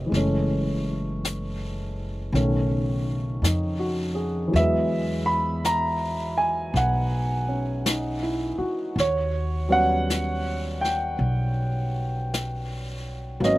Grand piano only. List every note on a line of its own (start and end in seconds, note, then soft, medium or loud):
0.00 0.11 D#3 soft
0.00 0.11 F#3 soft
0.00 0.12 A#3 soft
0.00 0.13 B3 soft
0.00 0.13 C#4 soft
0.06 2.30 E3 soft
0.06 2.32 G#3 soft
0.14 2.33 A3 soft
0.14 2.34 C#4 medium
2.33 4.53 C#3 soft
2.33 4.53 D#3 soft
2.33 4.54 A3 soft
2.33 4.54 C#4 soft
3.43 4.11 D#4 soft
3.79 4.36 F#4 soft
4.15 4.72 G#4 soft
4.48 8.94 E3 soft
4.48 8.95 F#3 soft
4.55 8.97 G#3 soft
4.55 8.99 B3 soft
4.55 5.23 E5 medium
5.26 5.65 B5 medium
5.66 6.39 A#5 medium
6.38 6.72 G#5 medium
6.77 8.55 F#5 medium
7.48 8.06 C#4 soft
7.86 8.55 D#4 soft
8.23 8.80 E4 soft
8.58 9.16 F#4 soft
9.00 9.67 C#5 medium
9.69 13.39 F#3 soft
9.69 13.41 G3 soft
9.69 13.42 B3 soft
9.69 13.42 C#4 soft
9.69 10.84 F#5 medium
10.81 13.00 G5 medium
13.40 13.58 F#3 soft
13.40 13.58 A#3 soft
13.40 13.58 B3 soft
13.45 13.58 C#4 medium
13.45 13.58 D#5 medium